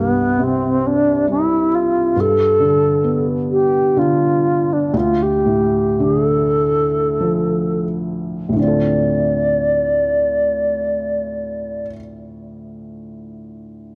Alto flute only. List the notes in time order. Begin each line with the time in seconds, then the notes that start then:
Already playing: B3
0.43 C4
0.87 D4
1.31 E4
1.75 F4
2.20 A4
3.52 G4
3.99 F4
4.73 D4
4.97 F4
5.22 G4
6.03 G#4
6.23 A4
8.58 D5